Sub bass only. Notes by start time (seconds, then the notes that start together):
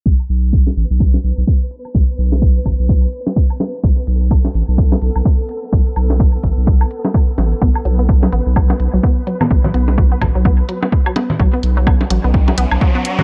0.06 B1
0.29 B1
0.77 A1
0.90 B1
1.24 B1
1.38 B1
1.95 B1
2.18 B1
2.66 A1
2.79 B1
3.84 B1
4.07 B1
4.55 A1
4.68 B1
5.02 B1
5.16 B1
5.73 B1
5.96 B1
6.44 A1
6.57 B1
7.38 A1
7.62 B1
7.85 B1
8.32 A1
8.46 B1
8.80 B1
8.94 B1
9.51 B1
9.74 B1
10.22 A1
10.35 B1
11.40 B1
11.63 B1
12.11 A1
12.24 B1
12.58 B1
12.72 B1